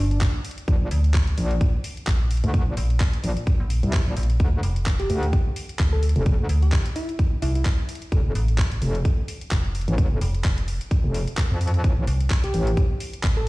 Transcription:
0.00 fm bass G1
0.11 soft synth lead D4, closed hi-hat
0.21 kick, clap, closed hi-hat
0.45 open hi-hat
0.51 closed hi-hat
0.58 closed hi-hat
0.68 wobble bass A#1, kick, closed hi-hat
0.81 wobble bass A#1
0.91 fm bass D2, open hi-hat
1.04 closed hi-hat
1.14 kick, clap
1.27 closed hi-hat
1.38 wobble bass A#1, open hi-hat
1.51 closed hi-hat
1.61 kick, closed hi-hat
1.84 open hi-hat
1.97 closed hi-hat
2.07 fm bass A#1, kick, clap, closed hi-hat
2.31 open hi-hat
2.37 closed hi-hat
2.44 wobble bass D2, closed hi-hat
2.54 kick, closed hi-hat
2.67 wobble bass A#1
2.77 fm bass A#1, open hi-hat
2.90 closed hi-hat
3.00 kick, clap
3.13 closed hi-hat
3.24 wobble bass A#1, open hi-hat
3.37 closed hi-hat
3.47 kick, closed hi-hat
3.60 fm bass A#1
3.70 open hi-hat
3.83 wobble bass C2, closed hi-hat
3.93 kick, clap, closed hi-hat
4.06 wobble bass A#1
4.17 fm bass A#1, open hi-hat
4.23 closed hi-hat
4.30 closed hi-hat
4.40 wobble bass D2, kick, closed hi-hat
4.53 wobble bass D2
4.63 fm bass F1, open hi-hat
4.76 closed hi-hat
4.86 kick, clap
5.00 soft synth lead G4, closed hi-hat
5.10 wobble bass D2, open hi-hat
5.23 closed hi-hat
5.33 kick, closed hi-hat
5.56 open hi-hat
5.69 closed hi-hat
5.79 fm bass D2, kick, clap, closed hi-hat
5.93 soft synth lead A4
6.03 open hi-hat
6.09 closed hi-hat
6.16 wobble bass F1, closed hi-hat
6.26 kick, closed hi-hat
6.39 wobble bass D2
6.49 fm bass D2, open hi-hat
6.62 soft synth lead G4, closed hi-hat
6.72 kick, clap
6.86 closed hi-hat
6.96 soft synth lead E4, open hi-hat
7.09 closed hi-hat
7.19 kick, closed hi-hat
7.42 fm bass C2, soft synth lead E4, open hi-hat
7.55 soft synth lead E4, closed hi-hat
7.65 kick, clap, closed hi-hat
7.89 open hi-hat
7.95 closed hi-hat
8.02 closed hi-hat
8.12 wobble bass F1, kick, closed hi-hat
8.25 wobble bass F1
8.35 fm bass A1, open hi-hat
8.48 closed hi-hat
8.58 kick, clap
8.72 closed hi-hat
8.82 wobble bass F1, open hi-hat
8.95 closed hi-hat
9.05 kick, closed hi-hat
9.28 open hi-hat
9.41 closed hi-hat
9.51 fm bass F1, kick, clap, closed hi-hat
9.75 open hi-hat
9.81 closed hi-hat
9.88 wobble bass A1, closed hi-hat
9.98 kick, closed hi-hat
10.11 wobble bass F1
10.21 fm bass F1, open hi-hat
10.34 closed hi-hat
10.44 fm bass F1, kick, clap
10.58 closed hi-hat
10.68 open hi-hat
10.81 closed hi-hat
10.91 kick, closed hi-hat
11.04 wobble bass F1
11.14 open hi-hat
11.28 closed hi-hat
11.37 kick, clap, closed hi-hat
11.51 wobble bass F2
11.61 open hi-hat
11.67 closed hi-hat
11.74 closed hi-hat
11.84 wobble bass A1, kick, closed hi-hat
11.97 wobble bass A1
12.07 fm bass C2, open hi-hat
12.20 closed hi-hat
12.30 kick, clap
12.44 soft synth lead G4, closed hi-hat
12.54 wobble bass A1, open hi-hat
12.67 closed hi-hat
12.77 kick, closed hi-hat
13.00 open hi-hat
13.13 closed hi-hat
13.23 fm bass A1, kick, clap, closed hi-hat
13.37 soft synth lead A4

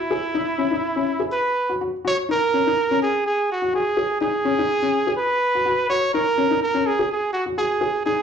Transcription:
Already playing: trumpet E4
0.11 felt piano G#4
0.35 felt piano D#4
0.58 felt piano C#4
0.71 felt piano D#4
0.96 felt piano C#4
1.20 felt piano G#4
1.32 trumpet B4
1.69 felt piano F#4
1.81 felt piano F#4
2.05 felt piano F#4, trumpet C#5
2.29 felt piano D#4, trumpet A#4
2.54 felt piano C#4
2.67 felt piano D#4
2.91 felt piano C#4
3.03 trumpet G#4
3.26 trumpet G#4
3.52 trumpet F#4
3.62 felt piano F#4
3.73 felt piano F#4, trumpet G#4
3.97 felt piano G#4
4.21 felt piano D#4, trumpet G#4
4.45 felt piano C#4
4.59 felt piano D#4
4.82 felt piano C#4
5.07 felt piano G#4
5.17 trumpet B4
5.55 felt piano F#4
5.65 felt piano F#4
5.90 felt piano F#4, trumpet C#5
6.14 felt piano D#4, trumpet A#4
6.38 felt piano C#4
6.51 felt piano D#4
6.63 trumpet A#4
6.74 felt piano C#4
6.87 trumpet G#4
6.99 felt piano G#4
7.12 trumpet G#4
7.33 trumpet F#4
7.46 felt piano F#4
7.58 felt piano F#4, trumpet G#4
7.81 felt piano G#4
8.06 felt piano D#4, trumpet G#4

